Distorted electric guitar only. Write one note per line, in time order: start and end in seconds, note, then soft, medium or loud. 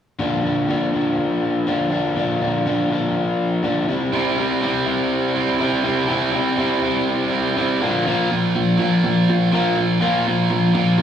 4.12 4.61 C3 medium
4.12 4.40 G3 medium
4.12 4.38 C4 medium
4.12 4.37 E4 medium
4.38 4.62 G3 medium
4.38 4.62 C4 medium
4.38 4.63 E4 medium
4.61 5.57 C3 medium
4.61 5.35 G3 medium
4.61 5.35 C4 medium
4.61 5.34 E4 medium
5.35 5.59 G3 medium
5.35 5.60 C4 medium
5.35 5.60 E4 medium
5.59 6.06 C3 medium
5.59 5.86 G3 medium
5.59 5.86 C4 loud
5.59 5.83 E4 medium
5.85 6.07 G3 medium
5.85 6.08 C4 medium
5.85 6.09 E4 medium
6.07 6.55 C3 medium
6.07 6.33 G3 medium
6.07 6.32 C4 medium
6.07 6.31 E4 loud
6.32 6.56 G3 medium
6.32 6.56 C4 medium
6.32 6.57 E4 medium
6.56 7.54 C3 medium
6.56 7.31 G3 medium
6.56 7.30 C4 medium
6.56 7.28 E4 medium
7.29 7.54 G3 medium
7.29 7.55 C4 medium
7.29 7.56 E4 medium
7.55 7.79 C3 medium
7.55 7.79 G3 medium
7.55 7.80 C4 medium
7.55 7.79 E4 medium
7.80 8.05 A#2 medium
7.80 8.05 D3 medium
7.80 8.05 F3 medium
7.80 8.04 A#3 medium
7.80 8.04 D4 medium
8.06 8.79 A#2 medium
8.06 8.79 F3 medium
8.06 8.77 A#3 medium
8.77 9.50 A#2 medium
8.77 9.51 F3 medium
8.77 9.50 A#3 medium
9.51 9.99 A#2 medium
9.51 10.00 F3 medium
9.51 10.01 A#3 medium
10.00 10.73 A#2 medium
10.00 10.73 F3 medium
10.00 10.72 A#3 loud
10.73 11.02 A#2 medium
10.73 11.02 F3 medium
10.73 11.02 A#3 medium